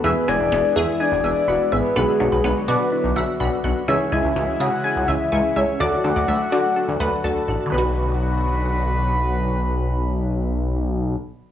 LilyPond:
<<
  \new Staff \with { instrumentName = "Synth pluck" } { \time 4/4 \key b \dorian \tempo 4 = 125 e''8 gis''4 r8 gis''8 e''16 r8. e''16 r16 | b'8 r16 b'16 b'8 d''16 r8. e''8 r4 | e''8 gis''4 r8 gis''8 e''16 r8. e''16 r16 | d''8 r16 d''16 e''8 d''16 r8. b'8 r4 |
b'2. r4 | r1 | }
  \new Staff \with { instrumentName = "Soft synth lead" } { \time 4/4 \key b \dorian b'8 d''4 e''8 d''8 d''4 b'8 | gis'8. gis'8. b'8 b'4 r4 | cis''8 e''4 fis''4 e''8 e''8 cis''8 | fis''2.~ fis''8 r8 |
b''1~ | b''1 | }
  \new Staff \with { instrumentName = "Synth arpeggio sound" } { \time 4/4 \key b \dorian e8 gis8 b8 gis'8 r8 gis''8 b''8 gis'''8 | d8 fis8 b8 fis'8 r8 fis''8 b''8 fis'''8 | e8 gis8 cis'8 gis'8 r8 gis''8 cis'''8 gis'''8 | d8 fis8 a8 fis'8 r8 fis''8 a''8 fis'''8 |
<d fis b fis'>1~ | <d fis b fis'>1 | }
  \new Staff \with { instrumentName = "Synth keys" } { \time 4/4 \key b \dorian <b e' gis'>8 <b e' gis'>8 <b e' gis'>8 <b e' gis'>8 <b e' gis'>8 <b e' gis'>8 <b e' fis'>8 <b e' gis'>8 | <b d' fis'>8 <b d' fis'>8 <b d' gis'>8 <b d' fis'>8 <b d' e'>8 <b d' fis'>8 <b d' fis'>8 <b d' fis'>8 | <cis' e' gis'>8 <cis' e' gis'>8 <cis' e' fis'>8 <cis' e' gis'>8 <cis' e' gis'>8 <cis' e' gis'>8 <cis' e' gis'>8 <cis' e' gis'>8 | <d' fis' a'>8 <d' fis' a'>8 <d' fis' a'>8 <d' fis' a'>8 <d' fis' a'>8 <d' fis' a'>8 <d' fis' a'>8 <d' fis' a'>8 |
<d' fis' b'>1~ | <d' fis' b'>1 | }
  \new Staff \with { instrumentName = "Analog synth pad" } { \clef bass \time 4/4 \key b \dorian << { <e gis gis'>1 | <d fis fis'>1 | <cis e e'>1 | <d fis fis'>1 |
<d fis b fis'>1~ | <d fis b fis'>1 | } \\ { b1~ | b1 | gis1 | a1 |
r1 | r1 | } >> }
  \new Staff \with { instrumentName = "Analog synth bass" } { \clef bass \time 4/4 \key b \dorian e,,16 r16 e,,16 e,,16 e,,16 r16 e,16 r8 e,,16 e,,16 r16 e,,16 r16 a,,16 r16 | b,,16 r16 b,,16 b,,16 b,,16 r16 b,16 r8 b,,16 b,,16 r16 b,,16 r16 b,,16 r16 | cis,16 r16 cis,16 cis,16 cis,16 r16 cis16 r8 cis,16 cis,16 r16 cis,16 r16 cis,16 r16 | d,16 r16 d,16 d,16 d,16 r16 d16 r8 d,16 d,16 r16 d,16 r16 a,,16 r16 |
b,,1~ | b,,1 | }
>>